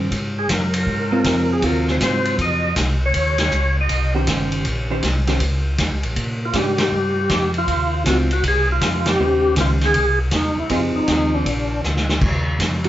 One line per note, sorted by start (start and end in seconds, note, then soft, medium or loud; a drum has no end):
0.11 0.48 G#2 medium
0.11 kick soft
0.11 ride medium
0.39 0.50 G#4 medium
0.49 0.86 F#2 medium
0.49 0.74 A#4 medium
0.49 kick soft
0.49 snare medium
0.49 hi-hat pedal medium
0.49 ride medium
0.74 ride medium
0.78 1.54 A#4 medium
0.86 1.23 G#2 medium
0.86 kick soft
1.12 1.60 C4 medium
1.12 1.61 F4 medium
1.24 1.61 F2 medium
1.24 kick soft
1.24 snare medium
1.24 hi-hat pedal medium
1.24 ride medium
1.53 1.65 G#4 medium
1.62 1.99 D#2 medium
1.62 2.68 F#3 medium
1.62 2.69 C4 medium
1.62 2.69 F4 medium
1.62 kick soft
1.62 ride medium
1.66 1.87 A#4 medium
1.88 1.97 C5 medium
1.88 snare soft
2.00 2.37 G#2 medium
2.00 2.37 C5 medium
2.00 kick soft
2.00 snare medium
2.00 hi-hat pedal medium
2.00 ride medium
2.25 ride soft
2.38 2.75 F2 medium
2.38 2.75 D#5 loud
2.38 kick soft
2.38 ride medium
2.76 3.13 C2 medium
2.76 kick soft
2.76 snare medium
2.76 hi-hat pedal medium
2.76 ride medium
3.06 3.42 C#5 loud
3.13 3.50 D#2 medium
3.13 kick soft
3.13 ride medium
3.38 snare medium
3.38 ride medium
3.44 3.77 C#5 medium
3.51 3.88 C#2 medium
3.51 hi-hat pedal medium
3.81 4.14 D#5 medium
3.89 4.26 C2 medium
3.89 kick soft
3.89 ride medium
4.15 4.63 D#3 medium
4.15 4.63 C#4 medium
4.15 4.63 G4 medium
4.15 4.63 C5 medium
4.27 4.64 G1 medium
4.27 kick soft
4.27 snare medium
4.27 hi-hat pedal medium
4.27 ride medium
4.52 ride soft
4.65 5.02 A#1 medium
4.65 kick soft
4.65 ride medium
4.91 5.02 D#3 medium
4.91 5.02 C#4 medium
4.91 5.02 G4 medium
4.91 5.03 C5 medium
5.03 5.40 C2 medium
5.03 kick soft
5.03 snare medium
5.03 hi-hat pedal medium
5.03 ride medium
5.27 5.39 D#3 medium
5.27 5.40 C#4 medium
5.27 5.40 G4 medium
5.27 5.40 C5 medium
5.27 snare soft
5.27 ride soft
5.40 5.77 C#2 medium
5.40 kick soft
5.40 ride medium
5.78 5.91 D#2 medium
5.78 kick soft
5.78 snare medium
5.78 hi-hat pedal medium
5.78 ride medium
5.92 6.04 C#2 soft
6.03 6.16 A#1 medium
6.03 ride soft
6.16 6.53 A#2 medium
6.16 kick soft
6.16 ride medium
6.45 6.57 F4 medium
6.53 6.91 G#2 medium
6.53 6.77 G#3 medium
6.53 6.77 D4 soft
6.53 6.77 G4 medium
6.53 6.80 G4 medium
6.53 kick soft
6.53 snare medium
6.53 hi-hat pedal medium
6.53 ride medium
6.78 7.52 G4 medium
6.78 snare medium
6.78 ride medium
6.91 7.29 G2 medium
7.29 7.66 F2 medium
7.29 kick soft
7.29 snare medium
7.29 hi-hat pedal medium
7.29 ride medium
7.54 ride soft
7.58 8.04 F4 loud
7.67 8.04 D#2 medium
7.67 kick soft
7.67 ride medium
8.05 8.42 C#2 medium
8.05 8.28 F#3 soft
8.05 8.28 C4 medium
8.05 8.29 F4 medium
8.05 8.18 F#4 medium
8.05 kick soft
8.05 snare medium
8.05 hi-hat pedal medium
8.05 ride medium
8.31 8.44 F#4 medium
8.31 ride soft
8.43 8.80 C2 medium
8.43 kick soft
8.43 ride medium
8.48 8.69 G#4 loud
8.72 9.09 F4 medium
8.81 9.18 F2 medium
8.81 kick soft
8.81 snare medium
8.81 hi-hat pedal medium
8.81 ride medium
9.06 9.55 G4 loud
9.06 snare medium
9.06 ride medium
9.18 9.55 D#2 medium
9.18 9.95 D#3 medium
9.18 9.95 C#4 medium
9.18 9.96 G4 medium
9.18 9.96 C5 medium
9.56 9.93 C#2 loud
9.56 kick soft
9.56 snare medium
9.56 hi-hat pedal medium
9.56 ride medium
9.61 9.71 F4 medium
9.81 snare soft
9.81 ride soft
9.85 10.19 G#4 loud
9.94 10.31 C2 medium
9.94 kick soft
9.94 ride medium
10.31 10.55 E2 medium
10.31 10.59 D#4 medium
10.31 kick soft
10.31 snare medium
10.31 hi-hat pedal medium
10.31 ride medium
10.57 10.63 E2 soft
10.57 10.72 E4 medium
10.70 10.93 F2 medium
10.70 11.46 F3 medium
10.70 11.46 C4 medium
10.70 11.46 D#4 medium
10.70 10.82 F4 medium
10.70 11.46 G#4 medium
10.70 kick soft
10.70 ride medium
10.94 11.01 F2 soft
10.94 11.35 D#4 medium
11.07 11.44 D#2 medium
11.07 kick soft
11.07 snare medium
11.07 hi-hat pedal medium
11.07 ride medium
11.35 11.81 D4 medium
11.45 11.82 A#1 medium
11.45 kick soft
11.45 ride medium
11.82 12.20 D2 medium
11.82 snare soft
11.82 hi-hat pedal medium
11.97 snare medium
12.09 snare medium
12.21 12.58 D#2 medium
12.21 kick medium
12.21 crash medium
12.59 12.89 F2 medium
12.59 kick soft
12.59 snare medium
12.59 hi-hat pedal medium
12.59 ride medium
12.84 12.89 F#4 medium
12.84 ride soft